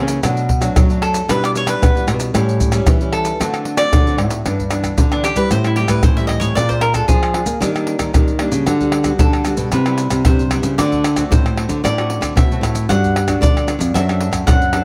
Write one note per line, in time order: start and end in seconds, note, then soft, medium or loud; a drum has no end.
0.00 0.19 C#3 loud
0.00 0.20 C#3 medium
0.00 0.19 E3 medium
0.00 0.19 A#3 medium
0.00 0.19 C#4 medium
0.08 pandeiro medium
0.08 maracas medium
0.23 0.68 B2 loud
0.23 0.74 B2 medium
0.23 0.48 F#3 medium
0.23 0.49 A3 medium
0.23 0.49 D4 medium
0.23 pandeiro medium
0.23 tamborim medium
0.23 maracas medium
0.23 surdo medium
0.37 pandeiro soft
0.37 maracas soft
0.49 pandeiro medium
0.49 surdo medium
0.60 0.84 F#3 medium
0.60 0.84 A3 medium
0.60 0.84 D4 medium
0.60 pandeiro medium
0.60 tamborim medium
0.60 maracas medium
0.76 1.26 F#2 medium
0.76 1.21 F#3 medium
0.76 pandeiro medium
0.76 tamborim medium
0.76 maracas medium
0.76 surdo loud
0.89 1.25 F#3 medium
0.89 1.25 A3 medium
0.89 1.25 D4 medium
0.89 pandeiro soft
0.89 maracas soft
1.02 1.30 A4 medium
1.02 pandeiro medium
1.02 tamborim medium
1.14 pandeiro medium
1.14 maracas medium
1.28 1.79 B2 medium
1.28 1.74 B2 medium
1.28 1.64 G3 medium
1.28 1.64 D4 medium
1.28 1.64 E4 medium
1.28 1.43 B4 medium
1.28 pandeiro medium
1.28 tamborim medium
1.28 maracas medium
1.28 surdo medium
1.44 1.50 D5 loud
1.44 pandeiro soft
1.44 tamborim medium
1.44 maracas soft
1.55 1.68 C#5 medium
1.55 pandeiro medium
1.55 maracas medium
1.66 1.89 G3 medium
1.66 1.89 D4 medium
1.66 1.89 E4 medium
1.66 2.05 B4 medium
1.66 pandeiro medium
1.66 tamborim medium
1.66 maracas medium
1.80 2.31 B2 medium
1.80 2.08 B3 loud
1.80 pandeiro medium
1.80 tamborim medium
1.80 maracas medium
1.80 surdo medium
1.95 2.30 G3 medium
1.95 2.30 D4 medium
1.95 2.31 E4 medium
1.95 pandeiro soft
1.95 maracas soft
2.07 2.30 B2 loud
2.07 pandeiro medium
2.07 tamborim medium
2.07 maracas medium
2.20 pandeiro medium
2.20 maracas medium
2.34 2.84 A2 medium
2.34 2.79 A2 loud
2.34 2.70 G3 medium
2.34 2.70 C#4 medium
2.34 2.70 E4 medium
2.34 pandeiro medium
2.34 tamborim medium
2.34 maracas medium
2.34 surdo medium
2.49 pandeiro soft
2.49 maracas soft
2.60 pandeiro medium
2.60 maracas medium
2.60 surdo medium
2.72 2.95 G3 medium
2.72 2.96 C#4 medium
2.72 2.96 E4 medium
2.72 pandeiro medium
2.72 tamborim medium
2.72 maracas medium
2.87 3.32 E3 medium
2.87 pandeiro medium
2.87 tamborim medium
2.87 maracas medium
2.87 surdo loud
3.01 3.36 G3 medium
3.01 3.36 C#4 medium
3.01 3.36 E4 medium
3.01 pandeiro soft
3.01 maracas soft
3.13 3.81 A4 medium
3.13 pandeiro medium
3.13 tamborim medium
3.25 pandeiro medium
3.25 maracas medium
3.40 3.90 D3 medium
3.40 3.85 D3 medium
3.40 3.75 A3 medium
3.40 3.75 C4 medium
3.40 3.75 F#4 medium
3.40 pandeiro medium
3.40 tamborim medium
3.40 maracas medium
3.40 surdo medium
3.54 pandeiro soft
3.54 tamborim medium
3.54 maracas soft
3.65 pandeiro medium
3.77 4.01 A3 medium
3.77 4.01 C4 medium
3.77 4.01 F#4 medium
3.77 4.15 D5 loud
3.77 pandeiro medium
3.77 tamborim medium
3.77 maracas medium
3.92 4.43 A2 medium
3.92 4.19 D3 loud
3.92 pandeiro medium
3.92 tamborim medium
3.92 maracas medium
3.92 surdo loud
4.07 4.42 A3 medium
4.07 4.42 C4 medium
4.07 4.42 F#4 medium
4.07 pandeiro soft
4.07 maracas soft
4.18 4.41 A2 medium
4.18 pandeiro medium
4.18 tamborim medium
4.31 pandeiro medium
4.31 maracas medium
4.45 4.90 G2 loud
4.45 4.96 G2 medium
4.45 4.61 E3 medium
4.45 4.61 B3 medium
4.45 4.61 D4 medium
4.45 pandeiro medium
4.45 tamborim medium
4.45 maracas medium
4.45 surdo medium
4.60 pandeiro soft
4.60 maracas soft
4.60 surdo soft
4.70 5.06 E3 medium
4.70 5.06 B3 medium
4.70 5.06 D4 medium
4.70 pandeiro medium
4.70 tamborim medium
4.70 maracas medium
4.84 pandeiro medium
4.84 tamborim medium
4.84 maracas medium
4.84 surdo soft
4.98 5.48 D3 medium
4.98 5.32 D3 medium
4.98 pandeiro medium
4.98 maracas medium
4.98 surdo medium
5.12 5.34 E3 medium
5.12 5.34 B3 medium
5.12 5.24 D4 medium
5.12 5.34 D4 medium
5.12 pandeiro soft
5.12 tamborim medium
5.12 maracas soft
5.24 5.37 G4 medium
5.24 pandeiro medium
5.24 tamborim medium
5.24 maracas medium
5.36 5.48 G3 medium
5.36 5.72 G3 medium
5.36 5.72 C4 medium
5.36 5.72 E4 medium
5.36 5.50 B4 medium
5.36 pandeiro medium
5.36 maracas medium
5.36 surdo soft
5.51 5.84 A2 loud
5.51 6.01 A2 medium
5.51 5.64 C5 medium
5.51 pandeiro medium
5.51 tamborim medium
5.51 maracas medium
5.51 surdo medium
5.64 5.78 E4 medium
5.64 pandeiro soft
5.64 tamborim medium
5.64 maracas soft
5.76 6.02 G3 medium
5.76 6.02 C4 medium
5.76 6.02 E4 medium
5.76 5.89 G4 medium
5.76 pandeiro medium
5.88 6.00 A2 medium
5.88 6.02 B4 medium
5.88 pandeiro medium
5.88 tamborim medium
5.88 maracas medium
5.88 surdo soft
6.03 6.37 A2 medium
6.03 6.54 E3 medium
6.03 6.17 C5 medium
6.03 pandeiro medium
6.03 tamborim medium
6.03 maracas medium
6.03 surdo loud
6.17 6.55 G3 medium
6.17 6.55 C4 medium
6.17 6.55 E4 medium
6.17 6.27 E5 medium
6.17 pandeiro soft
6.17 maracas soft
6.27 6.41 D#5 medium
6.27 pandeiro medium
6.27 tamborim medium
6.27 surdo soft
6.40 6.53 A2 medium
6.40 6.54 C#5 medium
6.40 pandeiro medium
6.40 maracas medium
6.55 7.01 A#2 loud
6.55 7.06 A#2 medium
6.55 6.81 G#3 medium
6.55 6.81 D4 medium
6.55 6.82 F4 medium
6.55 6.68 D5 medium
6.55 pandeiro medium
6.55 tamborim medium
6.55 maracas medium
6.55 surdo medium
6.69 6.82 C5 medium
6.69 pandeiro soft
6.69 maracas soft
6.69 surdo soft
6.81 6.94 A#4 medium
6.81 pandeiro medium
6.81 tamborim medium
6.94 7.30 G#3 medium
6.94 7.30 D4 medium
6.94 7.31 F4 medium
6.94 7.08 A4 medium
6.94 pandeiro medium
6.94 tamborim medium
6.94 maracas medium
6.94 surdo soft
7.08 7.42 F3 medium
7.08 7.59 F3 medium
7.08 7.57 G#4 medium
7.08 pandeiro medium
7.08 maracas medium
7.08 surdo medium
7.23 pandeiro soft
7.23 tamborim medium
7.23 maracas soft
7.34 7.51 G#3 soft
7.34 7.52 D4 medium
7.34 7.52 F4 medium
7.34 pandeiro medium
7.34 tamborim medium
7.46 7.58 A#3 medium
7.46 pandeiro medium
7.46 maracas medium
7.46 surdo soft
7.60 7.95 D#3 loud
7.60 8.11 D#3 medium
7.60 7.69 G3 medium
7.60 7.69 A#3 medium
7.60 7.69 D4 medium
7.60 pandeiro medium
7.60 tamborim medium
7.60 maracas medium
7.60 surdo medium
7.74 8.10 G3 medium
7.74 8.10 A#3 medium
7.74 8.10 D4 medium
7.74 pandeiro soft
7.74 tamborim medium
7.74 maracas soft
7.87 pandeiro medium
7.99 8.11 D#3 medium
7.99 pandeiro medium
7.99 tamborim medium
7.99 maracas medium
7.99 surdo soft
8.13 8.64 A#2 medium
8.13 8.48 D#3 medium
8.13 8.29 G3 medium
8.13 8.29 A#3 medium
8.13 8.30 D4 medium
8.13 pandeiro medium
8.13 tamborim medium
8.13 maracas medium
8.13 surdo loud
8.28 pandeiro soft
8.28 maracas soft
8.39 8.62 G3 medium
8.39 8.62 A#3 medium
8.39 8.63 D4 medium
8.39 pandeiro medium
8.39 tamborim medium
8.52 8.64 C#3 medium
8.52 pandeiro medium
8.52 maracas medium
8.66 9.11 D3 loud
8.66 9.17 D3 medium
8.66 8.75 G3 medium
8.66 8.75 B3 soft
8.66 8.75 F#4 medium
8.66 pandeiro medium
8.66 tamborim medium
8.66 maracas medium
8.66 surdo medium
8.80 9.02 G3 medium
8.80 9.03 B3 medium
8.80 9.03 F#4 medium
8.80 pandeiro soft
8.80 maracas soft
8.80 surdo soft
8.92 pandeiro medium
8.92 tamborim medium
9.04 9.41 G3 medium
9.04 9.41 B3 medium
9.04 9.41 F#4 medium
9.04 pandeiro medium
9.04 tamborim medium
9.04 maracas medium
9.04 surdo soft
9.19 9.53 D3 medium
9.19 9.70 D3 medium
9.19 9.69 A4 medium
9.19 pandeiro medium
9.19 maracas medium
9.19 surdo loud
9.33 pandeiro soft
9.33 tamborim medium
9.33 maracas soft
9.45 9.70 G3 medium
9.45 9.70 B3 medium
9.45 9.70 F#4 medium
9.45 pandeiro medium
9.45 tamborim medium
9.45 maracas medium
9.57 9.69 B2 medium
9.57 pandeiro medium
9.57 maracas medium
9.57 surdo soft
9.72 10.06 C3 loud
9.72 10.23 C3 medium
9.72 9.81 G3 medium
9.72 9.81 B3 medium
9.72 9.81 E4 medium
9.72 10.22 B4 medium
9.72 pandeiro medium
9.72 tamborim medium
9.72 maracas medium
9.72 surdo medium
9.86 10.21 G3 medium
9.86 10.22 B3 medium
9.86 10.22 E4 medium
9.86 pandeiro soft
9.86 tamborim medium
9.86 maracas soft
9.98 pandeiro medium
9.98 maracas medium
10.10 10.23 C3 medium
10.10 pandeiro medium
10.10 tamborim medium
10.10 maracas medium
10.10 surdo soft
10.25 10.76 G2 medium
10.25 10.59 C3 medium
10.25 10.41 G3 soft
10.25 10.41 B3 medium
10.25 10.41 E4 medium
10.25 10.75 C5 medium
10.25 pandeiro medium
10.25 tamborim medium
10.25 maracas medium
10.25 surdo medium
10.39 pandeiro soft
10.39 maracas soft
10.51 10.74 G3 medium
10.51 10.74 B3 medium
10.51 10.74 E4 medium
10.51 pandeiro medium
10.51 tamborim medium
10.51 maracas medium
10.51 surdo soft
10.63 10.75 C#3 medium
10.63 pandeiro medium
10.63 maracas medium
10.78 11.23 D3 loud
10.78 11.29 D3 medium
10.78 11.03 A3 medium
10.78 11.03 C4 medium
10.78 11.04 F#4 medium
10.78 11.27 D5 medium
10.78 pandeiro medium
10.78 tamborim medium
10.78 maracas medium
10.78 surdo medium
10.92 pandeiro soft
10.92 maracas soft
10.92 surdo soft
11.04 pandeiro medium
11.04 tamborim medium
11.04 maracas medium
11.16 11.52 A3 medium
11.16 11.53 C4 medium
11.16 11.53 F#4 medium
11.16 pandeiro medium
11.16 tamborim medium
11.16 maracas medium
11.16 surdo soft
11.31 11.64 A2 medium
11.31 11.81 A2 medium
11.31 11.80 C5 medium
11.31 pandeiro medium
11.31 maracas medium
11.31 surdo loud
11.46 pandeiro soft
11.46 tamborim medium
11.46 maracas soft
11.56 11.81 A3 medium
11.56 11.82 C4 medium
11.56 11.82 F#4 medium
11.56 pandeiro medium
11.56 tamborim medium
11.69 11.81 D3 medium
11.69 pandeiro medium
11.69 maracas medium
11.69 surdo soft
11.84 12.17 A2 loud
11.84 12.34 D3 medium
11.84 12.33 D5 medium
11.84 pandeiro medium
11.84 tamborim medium
11.84 maracas medium
11.84 surdo medium
11.98 12.33 A3 medium
11.98 12.33 C4 medium
11.98 12.33 F#4 medium
11.98 pandeiro soft
11.98 tamborim medium
11.98 maracas soft
12.10 pandeiro medium
12.21 12.33 D3 medium
12.21 pandeiro medium
12.21 tamborim medium
12.21 maracas medium
12.21 surdo soft
12.36 12.87 A2 medium
12.36 12.60 B2 medium
12.36 12.44 A3 medium
12.36 12.44 C4 medium
12.36 12.45 F#4 medium
12.36 12.86 E5 medium
12.36 pandeiro medium
12.36 tamborim medium
12.36 maracas medium
12.36 surdo loud
12.51 12.86 A3 medium
12.51 12.86 C4 medium
12.51 12.86 F#4 medium
12.51 pandeiro soft
12.51 maracas soft
12.61 12.86 A2 medium
12.61 pandeiro medium
12.61 tamborim medium
12.61 maracas medium
12.61 surdo soft
12.75 pandeiro medium
12.75 maracas medium
12.89 13.34 G2 loud
12.89 13.39 G3 medium
12.89 13.14 B3 medium
12.89 13.14 D4 medium
12.89 13.14 F#4 medium
12.89 13.38 F#5 medium
12.89 pandeiro medium
12.89 tamborim medium
12.89 maracas medium
12.89 surdo medium
13.04 pandeiro soft
13.04 maracas soft
13.04 surdo soft
13.16 pandeiro medium
13.16 tamborim medium
13.27 13.63 B3 medium
13.27 13.64 D4 medium
13.27 13.64 F#4 medium
13.27 pandeiro medium
13.27 tamborim medium
13.27 maracas medium
13.27 surdo soft
13.41 13.75 D3 medium
13.41 13.92 D3 medium
13.41 13.91 D5 medium
13.41 pandeiro medium
13.41 maracas medium
13.41 surdo loud
13.57 pandeiro soft
13.57 tamborim medium
13.57 maracas soft
13.67 13.92 B3 soft
13.67 13.92 D4 medium
13.67 13.92 F#4 medium
13.67 pandeiro medium
13.67 tamborim medium
13.67 maracas medium
13.79 13.91 F2 medium
13.79 pandeiro medium
13.79 maracas medium
13.79 surdo soft
13.94 14.28 F#2 loud
13.94 14.45 F#3 medium
13.94 14.04 C4 medium
13.94 14.04 D4 medium
13.94 14.05 A4 medium
13.94 14.44 E5 medium
13.94 pandeiro medium
13.94 tamborim medium
13.94 maracas medium
13.94 surdo medium
14.09 14.44 C4 medium
14.09 14.44 D4 medium
14.09 14.44 A4 medium
14.09 pandeiro soft
14.09 tamborim medium
14.09 maracas soft
14.21 pandeiro medium
14.31 14.44 F#2 medium
14.31 pandeiro medium
14.31 tamborim medium
14.31 maracas medium
14.31 surdo soft
14.47 14.81 F#2 medium
14.47 14.84 F#3 medium
14.47 14.63 C4 medium
14.47 14.63 D4 medium
14.47 14.64 A4 medium
14.47 14.84 F#5 medium
14.47 pandeiro medium
14.47 tamborim medium
14.47 maracas medium
14.47 surdo loud
14.62 pandeiro soft
14.62 maracas soft
14.73 14.84 C4 medium
14.73 14.84 D4 medium
14.73 14.84 A4 medium
14.73 pandeiro medium
14.73 tamborim medium